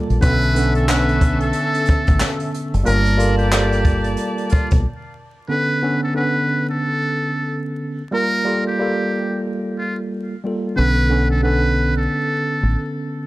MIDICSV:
0, 0, Header, 1, 6, 480
1, 0, Start_track
1, 0, Key_signature, 2, "minor"
1, 0, Tempo, 659341
1, 165, Time_signature, 4, 2, 24, 8
1, 9659, End_track
2, 0, Start_track
2, 0, Title_t, "Horn section"
2, 0, Program_c, 0, 61
2, 167, Note_on_c, 0, 61, 92
2, 167, Note_on_c, 0, 69, 92
2, 167, Note_on_c, 0, 76, 97
2, 1817, Note_off_c, 0, 61, 0
2, 1817, Note_off_c, 0, 69, 0
2, 1817, Note_off_c, 0, 76, 0
2, 2082, Note_on_c, 0, 58, 86
2, 2082, Note_on_c, 0, 74, 90
2, 2082, Note_on_c, 0, 81, 81
2, 3495, Note_off_c, 0, 58, 0
2, 3495, Note_off_c, 0, 74, 0
2, 3495, Note_off_c, 0, 81, 0
2, 9659, End_track
3, 0, Start_track
3, 0, Title_t, "Muted trumpet"
3, 0, Program_c, 1, 59
3, 160, Note_on_c, 1, 71, 113
3, 523, Note_off_c, 1, 71, 0
3, 550, Note_on_c, 1, 69, 76
3, 637, Note_off_c, 1, 69, 0
3, 641, Note_on_c, 1, 71, 87
3, 1003, Note_off_c, 1, 71, 0
3, 1031, Note_on_c, 1, 69, 89
3, 1721, Note_off_c, 1, 69, 0
3, 2085, Note_on_c, 1, 70, 110
3, 2445, Note_off_c, 1, 70, 0
3, 2459, Note_on_c, 1, 67, 75
3, 3012, Note_off_c, 1, 67, 0
3, 3286, Note_on_c, 1, 65, 78
3, 3415, Note_off_c, 1, 65, 0
3, 4000, Note_on_c, 1, 71, 89
3, 4363, Note_off_c, 1, 71, 0
3, 4391, Note_on_c, 1, 69, 67
3, 4477, Note_off_c, 1, 69, 0
3, 4485, Note_on_c, 1, 71, 75
3, 4845, Note_off_c, 1, 71, 0
3, 4873, Note_on_c, 1, 69, 82
3, 5562, Note_off_c, 1, 69, 0
3, 5925, Note_on_c, 1, 70, 100
3, 6285, Note_off_c, 1, 70, 0
3, 6311, Note_on_c, 1, 67, 74
3, 6858, Note_off_c, 1, 67, 0
3, 7123, Note_on_c, 1, 65, 72
3, 7253, Note_off_c, 1, 65, 0
3, 7840, Note_on_c, 1, 71, 105
3, 8203, Note_off_c, 1, 71, 0
3, 8230, Note_on_c, 1, 69, 71
3, 8317, Note_off_c, 1, 69, 0
3, 8323, Note_on_c, 1, 71, 81
3, 8684, Note_off_c, 1, 71, 0
3, 8713, Note_on_c, 1, 69, 83
3, 9402, Note_off_c, 1, 69, 0
3, 9659, End_track
4, 0, Start_track
4, 0, Title_t, "Tine electric piano"
4, 0, Program_c, 2, 4
4, 0, Note_on_c, 2, 55, 81
4, 0, Note_on_c, 2, 58, 70
4, 0, Note_on_c, 2, 65, 72
4, 0, Note_on_c, 2, 69, 79
4, 146, Note_off_c, 2, 55, 0
4, 149, Note_off_c, 2, 58, 0
4, 150, Note_on_c, 2, 50, 101
4, 153, Note_off_c, 2, 65, 0
4, 156, Note_off_c, 2, 69, 0
4, 158, Note_on_c, 2, 59, 92
4, 165, Note_on_c, 2, 61, 84
4, 172, Note_on_c, 2, 69, 105
4, 382, Note_off_c, 2, 50, 0
4, 386, Note_off_c, 2, 59, 0
4, 390, Note_off_c, 2, 61, 0
4, 393, Note_off_c, 2, 69, 0
4, 397, Note_on_c, 2, 50, 97
4, 403, Note_on_c, 2, 59, 87
4, 411, Note_on_c, 2, 61, 98
4, 417, Note_on_c, 2, 69, 104
4, 626, Note_off_c, 2, 50, 0
4, 629, Note_off_c, 2, 59, 0
4, 633, Note_off_c, 2, 61, 0
4, 636, Note_off_c, 2, 69, 0
4, 637, Note_on_c, 2, 50, 97
4, 643, Note_on_c, 2, 59, 88
4, 650, Note_on_c, 2, 61, 88
4, 657, Note_on_c, 2, 69, 104
4, 1988, Note_off_c, 2, 50, 0
4, 1991, Note_off_c, 2, 59, 0
4, 1995, Note_off_c, 2, 61, 0
4, 1998, Note_off_c, 2, 69, 0
4, 2064, Note_on_c, 2, 55, 93
4, 2071, Note_on_c, 2, 58, 87
4, 2078, Note_on_c, 2, 65, 91
4, 2084, Note_on_c, 2, 70, 106
4, 2299, Note_off_c, 2, 55, 0
4, 2303, Note_off_c, 2, 58, 0
4, 2306, Note_off_c, 2, 65, 0
4, 2308, Note_on_c, 2, 55, 96
4, 2309, Note_off_c, 2, 70, 0
4, 2315, Note_on_c, 2, 58, 94
4, 2321, Note_on_c, 2, 65, 94
4, 2328, Note_on_c, 2, 69, 100
4, 2541, Note_off_c, 2, 55, 0
4, 2545, Note_off_c, 2, 58, 0
4, 2548, Note_off_c, 2, 65, 0
4, 2551, Note_off_c, 2, 69, 0
4, 2560, Note_on_c, 2, 55, 104
4, 2566, Note_on_c, 2, 58, 82
4, 2573, Note_on_c, 2, 65, 86
4, 2579, Note_on_c, 2, 69, 114
4, 3523, Note_off_c, 2, 55, 0
4, 3526, Note_off_c, 2, 58, 0
4, 3529, Note_off_c, 2, 65, 0
4, 3532, Note_off_c, 2, 69, 0
4, 3993, Note_on_c, 2, 50, 92
4, 4000, Note_on_c, 2, 59, 83
4, 4007, Note_on_c, 2, 61, 79
4, 4015, Note_on_c, 2, 69, 94
4, 4224, Note_off_c, 2, 50, 0
4, 4227, Note_off_c, 2, 59, 0
4, 4231, Note_off_c, 2, 61, 0
4, 4235, Note_off_c, 2, 69, 0
4, 4238, Note_on_c, 2, 50, 89
4, 4244, Note_on_c, 2, 59, 82
4, 4252, Note_on_c, 2, 61, 87
4, 4258, Note_on_c, 2, 69, 96
4, 4467, Note_off_c, 2, 50, 0
4, 4469, Note_off_c, 2, 59, 0
4, 4473, Note_off_c, 2, 61, 0
4, 4476, Note_off_c, 2, 69, 0
4, 4476, Note_on_c, 2, 50, 89
4, 4482, Note_on_c, 2, 59, 81
4, 4489, Note_on_c, 2, 61, 79
4, 4495, Note_on_c, 2, 69, 96
4, 5828, Note_off_c, 2, 50, 0
4, 5831, Note_off_c, 2, 59, 0
4, 5834, Note_off_c, 2, 61, 0
4, 5837, Note_off_c, 2, 69, 0
4, 5906, Note_on_c, 2, 55, 89
4, 5912, Note_on_c, 2, 58, 83
4, 5919, Note_on_c, 2, 65, 89
4, 5924, Note_on_c, 2, 70, 99
4, 6138, Note_off_c, 2, 55, 0
4, 6143, Note_off_c, 2, 58, 0
4, 6147, Note_off_c, 2, 65, 0
4, 6147, Note_on_c, 2, 55, 92
4, 6150, Note_off_c, 2, 70, 0
4, 6153, Note_on_c, 2, 58, 84
4, 6160, Note_on_c, 2, 65, 93
4, 6168, Note_on_c, 2, 69, 94
4, 6381, Note_off_c, 2, 55, 0
4, 6384, Note_off_c, 2, 58, 0
4, 6387, Note_off_c, 2, 65, 0
4, 6391, Note_off_c, 2, 69, 0
4, 6398, Note_on_c, 2, 55, 98
4, 6406, Note_on_c, 2, 58, 79
4, 6413, Note_on_c, 2, 65, 81
4, 6419, Note_on_c, 2, 69, 106
4, 7525, Note_off_c, 2, 55, 0
4, 7528, Note_off_c, 2, 58, 0
4, 7532, Note_off_c, 2, 65, 0
4, 7535, Note_off_c, 2, 69, 0
4, 7599, Note_on_c, 2, 55, 81
4, 7606, Note_on_c, 2, 58, 66
4, 7612, Note_on_c, 2, 65, 70
4, 7619, Note_on_c, 2, 69, 75
4, 7827, Note_off_c, 2, 55, 0
4, 7830, Note_off_c, 2, 58, 0
4, 7833, Note_off_c, 2, 65, 0
4, 7833, Note_on_c, 2, 50, 98
4, 7837, Note_off_c, 2, 69, 0
4, 7841, Note_on_c, 2, 59, 86
4, 7847, Note_on_c, 2, 61, 83
4, 7853, Note_on_c, 2, 69, 98
4, 8064, Note_off_c, 2, 50, 0
4, 8068, Note_off_c, 2, 59, 0
4, 8071, Note_off_c, 2, 61, 0
4, 8074, Note_off_c, 2, 69, 0
4, 8078, Note_on_c, 2, 50, 92
4, 8085, Note_on_c, 2, 59, 83
4, 8091, Note_on_c, 2, 61, 93
4, 8098, Note_on_c, 2, 69, 97
4, 8306, Note_off_c, 2, 50, 0
4, 8310, Note_off_c, 2, 59, 0
4, 8313, Note_off_c, 2, 61, 0
4, 8316, Note_off_c, 2, 69, 0
4, 8319, Note_on_c, 2, 50, 92
4, 8325, Note_on_c, 2, 59, 80
4, 8332, Note_on_c, 2, 61, 82
4, 8339, Note_on_c, 2, 69, 101
4, 9659, Note_off_c, 2, 50, 0
4, 9659, Note_off_c, 2, 59, 0
4, 9659, Note_off_c, 2, 61, 0
4, 9659, Note_off_c, 2, 69, 0
4, 9659, End_track
5, 0, Start_track
5, 0, Title_t, "Fingered electric bass"
5, 0, Program_c, 3, 33
5, 73, Note_on_c, 3, 34, 92
5, 158, Note_off_c, 3, 34, 0
5, 168, Note_on_c, 3, 35, 116
5, 1098, Note_off_c, 3, 35, 0
5, 1517, Note_on_c, 3, 33, 99
5, 1601, Note_off_c, 3, 33, 0
5, 1995, Note_on_c, 3, 30, 94
5, 2079, Note_off_c, 3, 30, 0
5, 2091, Note_on_c, 3, 31, 116
5, 3019, Note_off_c, 3, 31, 0
5, 3438, Note_on_c, 3, 35, 92
5, 3521, Note_off_c, 3, 35, 0
5, 7851, Note_on_c, 3, 35, 110
5, 8779, Note_off_c, 3, 35, 0
5, 9195, Note_on_c, 3, 33, 93
5, 9279, Note_off_c, 3, 33, 0
5, 9659, End_track
6, 0, Start_track
6, 0, Title_t, "Drums"
6, 71, Note_on_c, 9, 42, 56
6, 144, Note_off_c, 9, 42, 0
6, 160, Note_on_c, 9, 42, 97
6, 165, Note_on_c, 9, 36, 116
6, 233, Note_off_c, 9, 42, 0
6, 238, Note_off_c, 9, 36, 0
6, 302, Note_on_c, 9, 42, 55
6, 374, Note_off_c, 9, 42, 0
6, 406, Note_on_c, 9, 42, 93
6, 479, Note_off_c, 9, 42, 0
6, 543, Note_on_c, 9, 42, 51
6, 616, Note_off_c, 9, 42, 0
6, 647, Note_on_c, 9, 39, 88
6, 650, Note_on_c, 9, 26, 66
6, 652, Note_on_c, 9, 38, 109
6, 720, Note_off_c, 9, 39, 0
6, 723, Note_off_c, 9, 26, 0
6, 724, Note_off_c, 9, 38, 0
6, 791, Note_on_c, 9, 42, 58
6, 863, Note_off_c, 9, 42, 0
6, 881, Note_on_c, 9, 42, 76
6, 882, Note_on_c, 9, 36, 85
6, 954, Note_off_c, 9, 42, 0
6, 955, Note_off_c, 9, 36, 0
6, 1021, Note_on_c, 9, 42, 60
6, 1094, Note_off_c, 9, 42, 0
6, 1112, Note_on_c, 9, 42, 95
6, 1185, Note_off_c, 9, 42, 0
6, 1266, Note_on_c, 9, 42, 50
6, 1339, Note_off_c, 9, 42, 0
6, 1349, Note_on_c, 9, 42, 73
6, 1375, Note_on_c, 9, 36, 94
6, 1422, Note_off_c, 9, 42, 0
6, 1447, Note_off_c, 9, 36, 0
6, 1505, Note_on_c, 9, 42, 55
6, 1514, Note_on_c, 9, 36, 105
6, 1578, Note_off_c, 9, 42, 0
6, 1587, Note_off_c, 9, 36, 0
6, 1604, Note_on_c, 9, 39, 86
6, 1606, Note_on_c, 9, 26, 76
6, 1609, Note_on_c, 9, 38, 109
6, 1677, Note_off_c, 9, 39, 0
6, 1679, Note_off_c, 9, 26, 0
6, 1681, Note_off_c, 9, 38, 0
6, 1743, Note_on_c, 9, 42, 59
6, 1816, Note_off_c, 9, 42, 0
6, 1850, Note_on_c, 9, 42, 81
6, 1923, Note_off_c, 9, 42, 0
6, 1992, Note_on_c, 9, 42, 57
6, 2065, Note_off_c, 9, 42, 0
6, 2081, Note_on_c, 9, 42, 96
6, 2153, Note_off_c, 9, 42, 0
6, 2222, Note_on_c, 9, 42, 58
6, 2295, Note_off_c, 9, 42, 0
6, 2325, Note_on_c, 9, 42, 95
6, 2398, Note_off_c, 9, 42, 0
6, 2463, Note_on_c, 9, 42, 52
6, 2535, Note_off_c, 9, 42, 0
6, 2566, Note_on_c, 9, 39, 88
6, 2570, Note_on_c, 9, 26, 63
6, 2570, Note_on_c, 9, 38, 113
6, 2639, Note_off_c, 9, 39, 0
6, 2643, Note_off_c, 9, 26, 0
6, 2643, Note_off_c, 9, 38, 0
6, 2710, Note_on_c, 9, 42, 57
6, 2783, Note_off_c, 9, 42, 0
6, 2801, Note_on_c, 9, 42, 78
6, 2803, Note_on_c, 9, 36, 85
6, 2874, Note_off_c, 9, 42, 0
6, 2875, Note_off_c, 9, 36, 0
6, 2941, Note_on_c, 9, 42, 58
6, 3014, Note_off_c, 9, 42, 0
6, 3033, Note_on_c, 9, 42, 92
6, 3106, Note_off_c, 9, 42, 0
6, 3187, Note_on_c, 9, 42, 51
6, 3260, Note_off_c, 9, 42, 0
6, 3271, Note_on_c, 9, 42, 70
6, 3296, Note_on_c, 9, 36, 98
6, 3344, Note_off_c, 9, 42, 0
6, 3368, Note_off_c, 9, 36, 0
6, 3425, Note_on_c, 9, 42, 54
6, 3435, Note_on_c, 9, 36, 103
6, 3498, Note_off_c, 9, 42, 0
6, 3508, Note_off_c, 9, 36, 0
6, 9659, End_track
0, 0, End_of_file